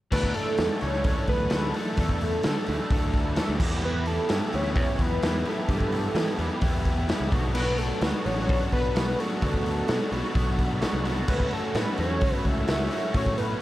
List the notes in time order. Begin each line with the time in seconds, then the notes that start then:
0.11 D2 E3 A3 D4 A4 B4, kick, crash
0.24 kick
0.34 A4, open hi-hat
0.58 E2 E3 A3 D4 A4, snare, open hi-hat
0.81 C#2 E3 A3 D4 A4 C#5, open hi-hat
0.94 snare
1.04 D2 E3 A3 D4 A4, kick, open hi-hat
1.27 D2 B4, kick, open hi-hat
1.50 D2 E3 A3 D4 A4, snare, open hi-hat
1.74 E3 A3 D4 A4, open hi-hat
1.97 E2 E3 A3 D4 A4, kick, open hi-hat
2.09 kick
2.21 open hi-hat
2.43 D3 E3 A3 D4 A4, snare, open hi-hat
2.66 D2 E3 A3 D4 A4, open hi-hat
2.90 D2 E3 A3 D4 A4, kick, open hi-hat
3.14 kick, open hi-hat
3.36 E3 A3 D4 A4, snare, open hi-hat
3.49 D2
3.58 E2 E3 B3 E4 G4, kick, crash
3.82 E3 B3 E4 G4 B4
4.06 A4, open hi-hat
4.27 G2 E3 B3 E4 G4, snare, open hi-hat
4.50 D2 E3 B3 E4 G4, open hi-hat
4.55 C#5
4.65 snare
4.74 E2 E3 B3 E4 G4, kick, open hi-hat
4.99 E2 B4, kick, open hi-hat
5.22 E2 E3 B3 E4 G4, snare, open hi-hat
5.45 E3 B3 E4 G4 A4, open hi-hat
5.69 G2 E3 B3 E4 G4, kick, open hi-hat
5.80 kick
5.92 open hi-hat
6.15 E3 B3 E4 G4, snare, open hi-hat
6.38 E2 E3 B3 E4 G4, open hi-hat
6.61 E2 E3 B3 E4 G4, kick, open hi-hat
6.85 kick, open hi-hat
7.08 E3 B3 E4 G4, snare, open hi-hat
7.20 C#2
7.32 B1 F#3 B3 D4 F#4, kick, open hi-hat
7.54 F#3 B3 D4 F#4 A4 B4 F#5 A5 B5, crash
7.78 A4, open hi-hat
8.02 D2 F#3 B3 D4 F#4 B4, snare, open hi-hat
8.25 A1 F#3 B3 D4 F#4 C#5, open hi-hat
8.38 snare
8.49 B1 F#3 B3 D4 F#4, kick, open hi-hat
8.73 B1 B4, kick, open hi-hat
8.95 B1 F#3 B3 D4 F#4, snare, open hi-hat
9.19 F#3 B3 D4 F#4 A4, open hi-hat
9.42 D2 F#3 B3 D4 F#4, kick, open hi-hat
9.54 kick
9.66 open hi-hat
9.88 B2 F#3 B3 D4 F#4, snare, open hi-hat
10.12 B1 F#3 B3 D4 F#4, open hi-hat
10.24 snare
10.34 B1 F#3 B3 D4 F#4, kick, open hi-hat
10.59 kick, open hi-hat
10.82 F#3 B3 D4 F#4, snare, open hi-hat
10.93 C2
11.05 F#3 B3 D4 F#4, open hi-hat
11.28 C#2 A3 C#4 F#4 B4 C#6 E6, kick, crash
11.40 kick
11.51 A4, open hi-hat
11.75 A2 A3 C#4 F#4 B4, snare, open hi-hat
11.98 E2 A3 C#4 F#4 C#5, open hi-hat
12.21 C#2 A3 C#4 F#4, kick, open hi-hat
12.35 B4
12.45 C#2 E5, kick, open hi-hat
12.68 C#2 A3 C#4 F#4, snare, open hi-hat
12.91 A3 C#4 F#4, open hi-hat
13.14 A2 A3 C#4 F#4 C#5, kick, open hi-hat
13.26 kick
13.38 B4, open hi-hat